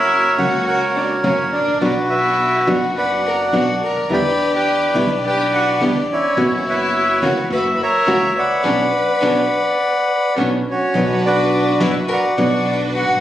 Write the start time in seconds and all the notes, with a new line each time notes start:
Already playing: F#1 A#3 C#4 E4 F#4 A#4 C#5 E5
0.38 C#2 C#3 F#3 A#3 C#4 F#4 F#5
0.66 F#4 A#4 C#5 F#5
0.95 D4 D5
1.24 F#1 C#3 F#3 A#3 C#4 F#4 C#5
1.53 D4 D5
1.60 G#1
1.68 A1
1.76 A#1
1.81 B1 B2 F#3 B3 D4 F#4 B4 D5
2.10 E4 B4 E5
2.67 F#1 B2 F#3 B3 D4 F#4 F#5
2.98 B4 D5 F#5 B5
3.26 A#4 A#5
3.53 B1 B2 F#3 B3 D4 F#4
3.57 F#5
3.83 A#4 A#5
3.90 C#2
3.97 D2
4.04 D#2
4.09 E2 B2 D3 G3 B3 D4 E4 G4 B4 D5 G5 B5
4.54 G4 B4 D5 G5
4.94 B1 B2 D3 G3 B3 D4 E4 G4 B4
4.99 B5
5.26 G4 B4 D5 G5
5.53 F#4 F#5
5.80 E2 B2 D3 G3 B3 D4 E4 G4
5.84 B4
6.10 C#4 E4 C#5
6.36 F#1 B2 E3 B3 C#4 E4 F#4
6.67 E4 B4 C#5 E5
7.22 C#2 C#3 E3 A#3 B3 C#4 E4 F#4 F#5
7.50 F#1 A#3 E4 F#4 B4
7.54 E5 B5
7.74 B4 B5
7.82 A#4 C#5 E5 A#5
8.06 C#2 C#3 E3 A#3 C#4 E4 F#4
8.38 B4 D5 F#5 B5
8.63 B1 B3 C#4 D4 F#4
9.20 B1 B3 C#4 D4 F#4
10.36 B1 B3 C#4 D4 F#4 B4
10.67 C#4 C#5
10.71 F#4
10.94 B1 B2 F#3 B3 D4 F#4 B4
11.25 D4 F#4 B4 D5
11.80 F#1 B2 F#3 B3 D4 E4 F#4 B4
11.84 E5
12.08 A#4 A#5
12.13 D5 F#5
12.37 B1 B2 F#3 B3 D4 F#4 B4 F#5
12.66 D4 D5
12.94 F#4
12.99 G#1 F#5
13.09 A1
13.15 A#1